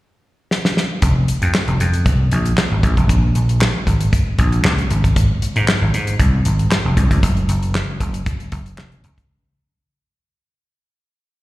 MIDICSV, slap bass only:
0, 0, Header, 1, 2, 480
1, 0, Start_track
1, 0, Tempo, 517241
1, 950, Time_signature, 4, 2, 24, 8
1, 10598, End_track
2, 0, Start_track
2, 0, Title_t, "Slap bass"
2, 0, Program_c, 0, 36
2, 949, Note_on_c, 0, 29, 99
2, 1134, Note_off_c, 0, 29, 0
2, 1316, Note_on_c, 0, 41, 92
2, 1403, Note_off_c, 0, 41, 0
2, 1556, Note_on_c, 0, 29, 89
2, 1643, Note_off_c, 0, 29, 0
2, 1670, Note_on_c, 0, 41, 92
2, 1909, Note_on_c, 0, 36, 96
2, 1923, Note_off_c, 0, 41, 0
2, 2094, Note_off_c, 0, 36, 0
2, 2152, Note_on_c, 0, 34, 75
2, 2336, Note_off_c, 0, 34, 0
2, 2518, Note_on_c, 0, 32, 84
2, 2605, Note_off_c, 0, 32, 0
2, 2629, Note_on_c, 0, 34, 91
2, 2727, Note_off_c, 0, 34, 0
2, 2756, Note_on_c, 0, 29, 81
2, 2870, Note_off_c, 0, 29, 0
2, 2870, Note_on_c, 0, 34, 90
2, 3055, Note_off_c, 0, 34, 0
2, 3112, Note_on_c, 0, 34, 91
2, 3393, Note_off_c, 0, 34, 0
2, 3590, Note_on_c, 0, 32, 88
2, 3775, Note_off_c, 0, 32, 0
2, 4070, Note_on_c, 0, 34, 83
2, 4255, Note_off_c, 0, 34, 0
2, 4310, Note_on_c, 0, 37, 80
2, 4495, Note_off_c, 0, 37, 0
2, 4552, Note_on_c, 0, 32, 79
2, 4920, Note_off_c, 0, 32, 0
2, 5158, Note_on_c, 0, 44, 94
2, 5245, Note_off_c, 0, 44, 0
2, 5398, Note_on_c, 0, 32, 83
2, 5484, Note_off_c, 0, 32, 0
2, 5510, Note_on_c, 0, 44, 89
2, 5694, Note_off_c, 0, 44, 0
2, 5749, Note_on_c, 0, 36, 95
2, 5934, Note_off_c, 0, 36, 0
2, 5988, Note_on_c, 0, 32, 76
2, 6173, Note_off_c, 0, 32, 0
2, 6357, Note_on_c, 0, 29, 89
2, 6444, Note_off_c, 0, 29, 0
2, 6468, Note_on_c, 0, 36, 87
2, 6567, Note_off_c, 0, 36, 0
2, 6596, Note_on_c, 0, 37, 88
2, 6683, Note_off_c, 0, 37, 0
2, 6709, Note_on_c, 0, 30, 90
2, 6894, Note_off_c, 0, 30, 0
2, 6947, Note_on_c, 0, 30, 94
2, 7231, Note_off_c, 0, 30, 0
2, 7426, Note_on_c, 0, 30, 85
2, 7612, Note_off_c, 0, 30, 0
2, 7908, Note_on_c, 0, 30, 75
2, 8093, Note_off_c, 0, 30, 0
2, 8149, Note_on_c, 0, 29, 85
2, 8390, Note_off_c, 0, 29, 0
2, 8390, Note_on_c, 0, 37, 77
2, 8575, Note_off_c, 0, 37, 0
2, 10598, End_track
0, 0, End_of_file